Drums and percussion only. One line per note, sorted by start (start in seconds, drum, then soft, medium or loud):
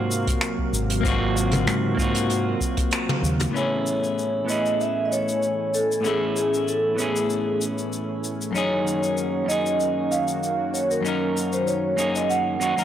0.11 shaker medium
0.27 kick medium
0.27 closed hi-hat medium
0.27 shaker medium
0.41 finger snap loud
0.41 closed hi-hat medium
0.41 shaker soft
0.59 kick medium
0.74 shaker medium
0.90 closed hi-hat medium
0.90 shaker soft
1.04 kick loud
1.04 closed hi-hat medium
1.04 shaker soft
1.37 shaker medium
1.52 closed hi-hat medium
1.52 mid tom medium
1.52 shaker medium
1.67 finger snap loud
1.67 closed hi-hat medium
1.67 shaker soft
1.98 kick medium
1.98 shaker medium
2.15 closed hi-hat medium
2.15 shaker medium
2.30 closed hi-hat medium
2.30 shaker soft
2.61 kick medium
2.61 shaker medium
2.77 kick loud
2.77 closed hi-hat medium
2.77 shaker medium
2.91 finger snap medium
2.91 closed hi-hat medium
2.91 shaker soft
3.09 mid tom medium
3.24 shaker medium
3.40 closed hi-hat medium
3.40 mid tom medium
3.40 shaker medium
3.56 shaker soft
3.87 shaker medium
4.04 shaker soft
4.19 shaker soft
4.49 shaker medium
4.66 shaker soft
4.81 shaker soft
5.12 shaker medium
5.28 shaker soft
5.43 shaker soft
5.74 shaker medium
5.92 shaker soft
6.05 shaker soft
6.36 shaker medium
6.54 shaker soft
6.68 shaker soft
6.99 shaker medium
7.16 shaker medium
7.30 shaker soft
7.61 shaker medium
7.78 shaker medium
7.93 shaker soft
8.24 shaker medium
8.41 shaker soft
8.55 shaker soft
8.87 shaker medium
9.03 shaker medium
9.17 shaker soft
9.50 shaker medium
9.66 shaker medium
9.80 shaker soft
10.12 shaker medium
10.28 shaker soft
10.43 shaker soft
10.75 shaker medium
10.91 shaker medium
11.05 shaker soft
11.37 shaker medium
11.53 shaker soft
11.67 shaker soft
11.98 shaker medium
12.16 shaker medium
12.30 shaker soft
12.61 shaker medium
12.78 shaker medium